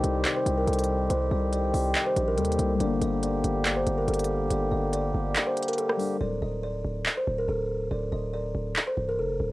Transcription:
0.00 0.24 C2 loud
0.00 2.31 C3 medium
0.00 2.77 D#3 medium
0.00 2.34 G3 medium
0.00 6.17 G3 medium
0.00 2.77 C4 medium
0.00 2.37 D#4 medium
0.00 6.17 G4 medium
0.00 0.33 D5 medium
0.00 closed hi-hat medium
0.25 clap loud
0.25 closed hi-hat medium
0.36 0.55 C5 medium
0.46 0.67 C2 loud
0.46 closed hi-hat medium
0.58 0.66 A#4 medium
0.68 1.08 C2 loud
0.68 1.08 A4 medium
0.68 closed hi-hat soft
0.73 closed hi-hat medium
0.79 closed hi-hat medium
0.84 closed hi-hat medium
1.10 1.31 C2 loud
1.10 1.28 C5 medium
1.10 closed hi-hat medium
1.31 1.72 C2 loud
1.31 1.50 D#5 medium
1.53 2.03 D5 medium
1.53 closed hi-hat medium
1.74 1.94 C2 loud
1.74 open hi-hat medium
1.95 clap loud
1.95 closed hi-hat medium
2.06 2.25 C5 medium
2.16 2.39 A#1 loud
2.16 closed hi-hat medium
2.28 2.36 A#4 medium
2.35 2.58 D#2 loud
2.35 2.79 C3 medium
2.35 2.74 G3 soft
2.35 2.78 A4 medium
2.35 closed hi-hat medium
2.41 2.82 A#3 medium
2.41 closed hi-hat medium
2.52 closed hi-hat medium
2.59 2.79 C2 loud
2.59 closed hi-hat medium
2.75 5.93 G3 medium
2.80 3.01 G1 loud
2.80 6.17 D3 medium
2.80 6.17 A#3 medium
2.80 5.96 D4 medium
2.80 2.99 D5 medium
2.80 closed hi-hat medium
2.86 5.98 A#3 medium
3.02 3.42 G1 loud
3.02 3.20 D#5 medium
3.02 closed hi-hat medium
3.23 3.73 D5 medium
3.23 closed hi-hat medium
3.44 3.85 G1 loud
3.44 closed hi-hat medium
3.65 clap loud
3.65 closed hi-hat medium
3.76 3.95 C5 medium
3.87 4.07 G1 loud
3.87 closed hi-hat medium
3.98 4.06 A#4 medium
4.08 4.49 G1 loud
4.08 4.48 A4 medium
4.08 closed hi-hat medium
4.14 closed hi-hat medium
4.19 closed hi-hat medium
4.24 closed hi-hat medium
4.50 4.71 G1 loud
4.50 4.69 D5 medium
4.50 closed hi-hat medium
4.71 5.13 G1 loud
4.71 4.90 D#5 medium
4.93 5.44 D5 medium
4.93 closed hi-hat medium
5.14 5.35 G1 loud
5.36 clap loud
5.36 closed hi-hat medium
5.47 5.65 C5 medium
5.57 closed hi-hat medium
5.63 closed hi-hat medium
5.68 5.77 A#4 medium
5.68 closed hi-hat medium
5.73 closed hi-hat soft
5.78 6.18 A4 medium
5.78 closed hi-hat medium
5.89 cross-stick medium
5.97 6.20 G3 medium
5.97 6.21 D4 soft
5.97 open hi-hat medium
6.02 6.22 A#4 medium
6.21 6.41 D1 loud
6.21 6.39 D5 medium
6.42 6.83 D1 loud
6.42 6.60 D#5 medium
6.63 7.14 D5 medium
6.85 7.05 D1 loud
7.06 clap loud
7.17 7.35 C5 medium
7.27 7.48 D1 loud
7.38 7.47 A#4 medium
7.48 7.89 D1 loud
7.48 7.88 A4 medium
7.91 8.11 D1 loud
7.91 8.09 D5 medium
8.12 8.53 D1 loud
8.12 8.30 D#5 medium
8.33 8.84 D5 medium
8.55 8.75 D1 loud
8.76 clap loud
8.87 9.05 C5 medium
8.97 9.20 C1 loud
9.09 9.17 A#4 medium
9.19 9.39 F1 loud
9.19 9.52 A4 medium
9.40 9.52 D1 loud

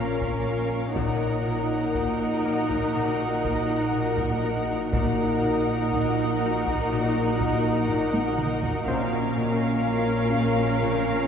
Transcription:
0.00 0.92 A#1 soft
0.00 0.92 A#2 soft
0.00 0.95 A#2 soft
0.00 0.45 A#3 soft
0.00 0.92 C#4 soft
0.00 0.92 F4 medium
0.00 0.91 A#4 medium
0.00 0.92 A#4 soft
0.00 1.91 A#4 soft
0.00 0.91 C#5 medium
0.00 1.41 D#5 soft
0.00 0.91 F5 soft
0.22 taiko medium
0.46 1.94 A#3 soft
0.95 4.89 A#1 soft
0.95 1.45 A#2 medium
0.95 4.89 A#2 soft
0.95 4.92 D#4 soft
0.95 4.92 F#4 medium
0.95 4.88 A#4 soft
0.95 4.89 A#4 soft
0.95 4.93 D#5 medium
0.95 4.88 F#5 soft
0.95 taiko medium
1.46 2.94 A#2 soft
1.95 2.44 A#3 soft
1.95 taiko medium
2.45 3.44 A#3 soft
2.45 5.39 A#3 soft
2.45 5.38 A#4 soft
2.70 taiko medium
2.96 3.94 A#2 medium
3.45 4.43 A#3 soft
3.45 taiko medium
3.95 4.93 A#2 soft
4.18 taiko medium
4.44 5.92 A#3 soft
4.92 8.83 A#1 medium
4.92 8.83 A#2 soft
4.92 5.42 A#2 medium
4.92 8.83 D#4 medium
4.92 8.84 F#4 medium
4.92 8.83 A#4 soft
4.92 8.84 A#4 medium
4.92 8.84 D#5 medium
4.92 8.83 F#5 medium
4.92 taiko medium
5.43 6.91 A#2 soft
5.92 6.41 A#3 soft
5.92 taiko medium
6.43 7.40 A#3 soft
6.67 taiko medium
6.92 7.89 A#2 medium
7.41 8.38 A#3 soft
7.41 taiko medium
7.89 8.87 A#2 soft
7.89 taiko low-mid medium
8.14 taiko high medium
8.38 9.86 A#3 soft
8.38 taiko mid medium
8.62 taiko low medium
8.86 11.28 A#1 medium
8.86 11.28 A#2 medium
8.86 9.38 A#2 medium
8.86 11.28 C4 soft
8.86 11.28 C#4 medium
8.86 11.28 F4 medium
8.86 11.28 A#4 soft
8.86 11.28 C5 soft
8.86 11.28 F5 medium
8.86 taiko medium
9.39 10.82 A#2 soft
9.87 10.34 A#3 soft
10.34 11.28 A#3 soft
10.34 taiko soft
10.84 11.28 A#2 medium

